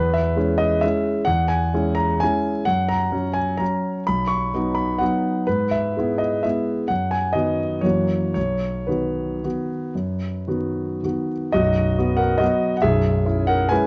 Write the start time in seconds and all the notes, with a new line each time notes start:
Already playing: E2 B4
0.14 E5
0.36 G#3 C#4 E4
0.58 D#5
0.81 G#3 C#4 E4 E5
1.25 E2 F#5
1.48 G#5
1.74 G#3 C#4 E4
1.95 A#5
2.20 G#3 C#4 E4 G#5
2.65 F#2 F#5
2.89 A#5
3.12 F#3 C#4
3.33 G#5
3.57 F#3 C#4 A#5
4.07 B1 B5
4.27 C#6
4.54 F#3 B3 D#4
4.75 B5
4.98 F#3 B3 D#4 F#5
5.47 G#2 B4
5.71 E5
5.97 G#3 B3 E4
6.18 D#5
6.43 G#3 B3 E4 E5
6.88 F#2 F#5
7.11 G#5
7.33 D#3 B3 F#4 D#5
7.81 F#2 E3 A#3 F#4 C#5
8.34 B1 C#5
8.87 D#3 B3 F#4 B4
9.44 D#3 B3 F#4
9.95 F#2
10.48 D#3 B3 F#4
11.03 D#3 B3 F#4
11.52 B0 B1 F#4 D#5
11.98 B3 F#4
12.16 A#4 F#5
12.38 F#3 B3 F#4 D#5
12.77 F#5
12.82 B0 B1 G#4 E5
13.25 C#4 E4
13.47 A#4 F#5
13.69 G#3 C#4 E4 B4 G#5